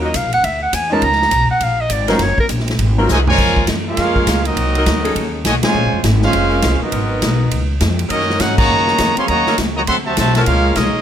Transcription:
Already playing: D#2 F#3 C#4 D#4 F4 A#4
0.01 D#3 A#3 C#4 F#4 D#5
0.14 C2 F5, kick, hi-hat pedal, ride
0.24 A#1
0.33 F#1 F#5, ride
0.44 D2 E5, kick, ride
0.62 F#5
0.73 E2 G#5, kick, hi-hat pedal, ride
0.90 F3 G#3 A#3 C#4 D#4 F4 A#4 A5
1.02 C#2 A#5, kick, ride
1.12 snare
1.22 snare
1.31 B1, kick, hi-hat pedal, ride
1.50 F#5, muted upright bass stroke
1.60 A#1 F5, kick, ride
1.81 D#5
1.90 G#1 D5, kick, hi-hat pedal, ride
2.08 F#3 C#4 D#4 F4 A#4 C5, snare, ride
2.19 F#1 C#5, kick, snare, ride
2.38 A#4, muted upright bass stroke, kick
2.49 A#1, kick, hi-hat pedal, ride
2.60 snare
2.68 snare, ride
2.79 G#1, kick, ride
2.98 F#3 C4 D#4 F4 A#4
3.07 C2 C3 D#3 G#3, snare, hi-hat pedal
3.12 F#4 C5 D#5 G#5
3.27 A#2 F3 G#3 F4 A#4 C#5 G#5, floor tom
3.38 C#2 G#3 C#4 F4 A#4, kick, crash
3.57 kick
3.67 F#2, kick, snare, hi-hat pedal, ride
3.87 G#3 A#3 C#4 F4 G#4 A#4 F5
3.97 F2, kick, snare, ride
4.16 G#3 C#4 F4 A#4, kick
4.27 C#2, kick, snare, hi-hat pedal, ride
4.45 F#3 A#3 C4 D#4 F#4 A#4 D#5, ride
4.56 C2, kick, ride
4.75 F#3 C4 D#4 A#4, ride
4.86 D2, kick, snare, hi-hat pedal, ride
5.04 C#4 D#4 G#4 A4, ride
5.15 D#2, kick, ride
5.45 B1 A2 D#3 G#3 F#4 C#5 D#5 G#5, kick, snare, hi-hat pedal, ride
5.63 C#3 F3 G#3 F4 C5 C#5 G#5, muted upright bass stroke, snare, ride
5.74 A#1
5.84 G#1
5.93 F1
6.04 G#1, kick, snare, hi-hat pedal, ride
6.22 G#3 C#4 F4 G#4 C5 F5, snare
6.33 F1, kick, ride
6.50 G#3 C4 C#4 A#4
6.62 C2, kick, snare, hi-hat pedal, ride
6.81 F#3 B3 D#4 F#4 A#4 D#5, muted upright bass stroke
6.92 G#1 G#3 B3 F#4 A#4, kick, ride
7.22 B1, kick, snare, hi-hat pedal, ride
7.51 C#2, kick, ride
7.81 F2, kick, snare, hi-hat pedal, ride
7.99 ride
8.08 F#2 D#3 F#3 A#3 C#4 D#4 F#4 A#4 D#5, kick, ride
8.21 snare
8.30 snare
8.39 G#2 C#4 D#4 F#4 A#4 C#5 F#5, kick, snare, hi-hat pedal, ride
8.57 C#3 D#3 A#3 F#4 C#5 D#5 A#5, kick, crash
8.69 F#2
8.88 snare
8.98 F2, kick, snare, hi-hat pedal, ride
9.16 C4 G#4 C#5 F5 C6, muted upright bass stroke, ride
9.26 D#2 C#3 F#3 A#3 F#4 C#5 D#5 A#5, kick, ride
9.47 F#3 C#4 D#4 A#4, snare
9.58 C#2, kick, snare, hi-hat pedal, ride
9.76 C#3 F#3 A#3 F#4 C#5 D#5 A#5
9.87 D2 F#3 A3 C4 A4 E5 F#5 C6, kick, ride
10.05 C3 F#3 A3 F#4 C5 E5 A5
10.16 B1 C3 F#3 A3 F#4 C5 E5 A5, kick, snare, hi-hat pedal, ride
10.33 C3 F#3 G#3 A3 F#4 C5 E5 A5, snare, ride
10.37 C#4 F4 A#4
10.45 C#2 G#3 A#3 C#4 F4 G#4 A#4 F5, kick, ride
10.74 C2 G#3 A#3 C#4 D#4 F4 G#4 A#4 D#5, kick, snare, hi-hat pedal, ride
10.95 muted upright bass stroke

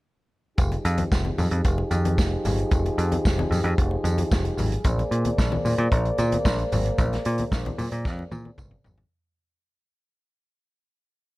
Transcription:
0.58 F1 F3 D#4 G4 G#4, kick, closed hi-hat, tambourine, low conga
0.72 closed hi-hat, muted conga
0.85 F2, closed hi-hat, tambourine
0.98 closed hi-hat, high conga
1.12 F1, kick, snare, tambourine, muted conga
1.25 high conga
1.38 F2, open hi-hat, tambourine, low conga
1.51 F2, closed hi-hat
1.64 F1, kick, closed hi-hat, tambourine, muted conga
1.78 muted conga
1.91 F2, closed hi-hat, tambourine, high conga
2.05 closed hi-hat, high conga
2.18 F1, kick, snare, tambourine, muted conga
2.45 G1, open hi-hat, tambourine, low conga
2.58 closed hi-hat
2.71 F1, kick, closed hi-hat, tambourine, muted conga, low conga
2.85 closed hi-hat, muted conga
2.98 F2, closed hi-hat, tambourine
3.12 closed hi-hat, high conga
3.25 F1, kick, snare, tambourine
3.39 muted conga, high conga
3.51 F2, open hi-hat, tambourine, low conga
3.64 F2, closed hi-hat
3.78 F1, kick, closed hi-hat, muted conga
3.91 muted conga
4.04 F2, closed hi-hat, tambourine, high conga
4.18 closed hi-hat, high conga
4.32 F1, kick, snare, tambourine, muted conga
4.45 closed hi-hat, muted conga
4.57 G#1, open hi-hat, tambourine, low conga
4.72 closed hi-hat
4.84 A#1 A#3 C5 D5, kick, closed hi-hat, tambourine, muted conga, low conga
4.99 closed hi-hat, muted conga
5.11 A#2, closed hi-hat
5.25 closed hi-hat, high conga
5.38 A#1, kick, snare, tambourine
5.52 muted conga, high conga
5.65 A#2, open hi-hat, tambourine, low conga
5.78 A#2, closed hi-hat
5.92 A#1, kick, closed hi-hat, muted conga
6.05 closed hi-hat
6.18 A#2, closed hi-hat, tambourine, high conga
6.32 closed hi-hat, high conga
6.45 A#1, kick, snare, tambourine, muted conga
6.58 closed hi-hat
6.72 G#1, open hi-hat, tambourine, low conga
6.86 closed hi-hat
6.98 A#1, kick, closed hi-hat, tambourine, muted conga, low conga
7.13 snare, closed hi-hat, muted conga
7.25 A#2, closed hi-hat
7.38 closed hi-hat, high conga
7.52 A#1, kick, snare, tambourine, muted conga
7.65 closed hi-hat, muted conga, high conga
7.78 A#2, open hi-hat, tambourine, low conga
7.91 A#2, closed hi-hat
8.05 F2, kick, snare, tambourine, muted conga
8.19 muted conga
8.31 A#2, high tom, tambourine, high conga
8.45 high conga
8.58 G1, kick, mid tom, tambourine, muted conga
8.71 mid tom
8.84 G#1, floor tom, tambourine, low conga
8.98 floor tom

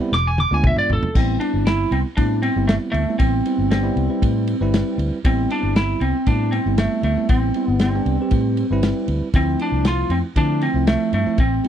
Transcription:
0.00 G3 B3 C4 E4
0.12 E1 D6, snare
0.27 G#5
0.38 D6, high tom
0.51 D2 G#3 B3 D4 F4 G#5
0.64 E5, kick, mid tom
0.76 D5, mid tom
0.89 G#1 A4, floor tom
1.03 muted fingered electric bass stroke, floor tom
1.14 A1 G3 B3 C4 E4, kick, crash
1.40 D4, ride
1.54 G1
1.66 E4, snare, ride
1.91 C2 C4, ride
2.17 A2 G3 B3 C4 D4 E4, kick, ride
2.42 C4, ride
2.56 G1 G3 B3 C4 E4
2.68 A3, snare, ride
2.92 D2 A3, ride
3.07 G3 B3 C4 E4, muted fingered electric bass stroke
3.19 A1 C4, kick, ride
3.45 G3 B3 C4 E4, ride
3.58 G1
3.70 G3 B3 C4 D4, snare, ride
3.83 G3 B3 C4 E4
3.96 C2, ride
4.09 G3 C4 E4 B4
4.22 A2, kick, ride
4.47 ride
4.61 G1 G3 C4 E4 B4
4.74 snare, ride
4.98 D2, ride
5.24 A1 G3 B3 C4 E4, kick, ride
5.50 D4, ride
5.63 G1
5.76 E4, snare, ride
6.01 C2 C4, ride
6.26 A2 G3 B3 C4 D4 E4, kick, ride
6.52 C4, ride
6.66 G1 G3 B3 C4 E4
6.78 A3, snare, ride
7.03 D2 A3, ride
7.16 G3 B3 C4 E4
7.29 A1 C4, kick, ride
7.54 G3 B3 C4 E4, ride
7.68 G1 B3
7.79 G3 B3 C4 E4, snare, ride
7.95 G3 B3 C4 D4
8.06 C2, ride
8.21 G3 C4 G4 B4
8.31 A2, kick, ride
8.57 ride
8.70 G1 G3 C4 E4 B4
8.83 snare, ride
9.08 D2, ride
9.22 muted fingered electric bass stroke
9.34 D2 F3 A3 C4 E4, kick, ride
9.59 D4, ride
9.72 C2
9.85 F4, snare, ride
10.09 F2 C4, ride
10.36 D3 F3 A3 C4 D4 E4, kick, ride
10.61 C4, ride
10.74 C2 F3 A3 C4 E4
10.87 A3, snare, ride
11.13 G2 A3, ride
11.26 F3 A3 C4 E4, muted fingered electric bass stroke
11.38 A1 C4, kick, ride
11.64 G3 B3 C4, ride

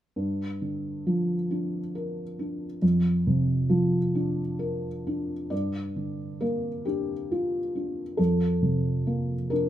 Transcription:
0.16 G2
0.62 D3
1.07 F3
1.51 D4
1.95 A#4
2.39 D4
2.82 F2
3.27 C3
3.70 F3
4.15 D4
4.59 A#4
5.07 D4
5.50 G2 D5
5.96 D3
6.41 A#3 A#4
6.85 D4 G4
7.32 F4
7.75 D4
8.17 F2 A4
8.63 C3
9.07 A#3
9.50 D4 A#4

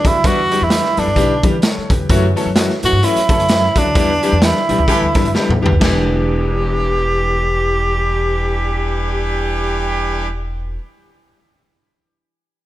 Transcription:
0.04 D2 E3 G3 B3 D4 E4 F#4, kick, closed hi-hat
0.24 E2 E3 G3 B3 D4 E4 F#4, kick, closed hi-hat
0.51 E3 G3 B3 D4 G4, closed hi-hat
0.61 E2 E4
0.70 E3 G3 B3 D4 G4, snare, closed hi-hat
0.84 snare
0.97 F#2 E3 G3 B3 D4 A4, closed hi-hat
1.07 G2
1.16 B1 E3 G3 B3 D4 G4, kick, closed hi-hat
1.43 E3 G3 B3 D4 G4, kick, closed hi-hat
1.62 A4 C#5, snare, closed hi-hat
1.77 muted upright bass stroke
1.90 E2 G4 B4, kick, closed hi-hat
2.09 F#2 E3 F#3 A3 C#4 F#4, kick, closed hi-hat
2.36 E3 F#3 A3 C#4 A4, closed hi-hat
2.46 F#2
2.55 E3 F#3 A3 C#4 F#4, snare, closed hi-hat
2.70 snare
2.83 A2 E3 F#3 A3 C#4 F#4, closed hi-hat
2.92 G2
3.02 E3 F#3 A3 C#4 E4, closed hi-hat
3.16 muted upright bass stroke, closed hi-hat
3.29 F#2 E3 F#3 A3 C#4 A4, kick, closed hi-hat
3.40 closed hi-hat
3.49 E3 F#3 A3 C#4 E4, snare, closed hi-hat
3.76 D2 E3 F#3 A3 C#4 D4 F#4, kick, closed hi-hat
3.95 E2 E3 G3 B3 D4 G4, kick, closed hi-hat
4.22 E3 G3 B3 D4 G4, closed hi-hat
4.32 E2
4.41 E3 G3 B3 D4 E4 G4, snare, closed hi-hat
4.56 snare
4.69 B1 E3 G3 B3 D4 G4, closed hi-hat
4.78 C#2
4.88 E3 G3 B3 D4 G4 A4, kick, closed hi-hat
5.02 D2
5.15 G2 E3 G3 B3 D4 E4, kick, snare, closed hi-hat
5.25 F#2, closed hi-hat
5.34 E3 G3 B3 D4 G4, snare
5.49 E2, mid tom
5.61 C#2 E3 G3 B3 D4 G4
5.66 floor tom
5.72 D2
5.79 E1 E3 G3 B3 D4 G4, kick, snare, crash
5.84 G4

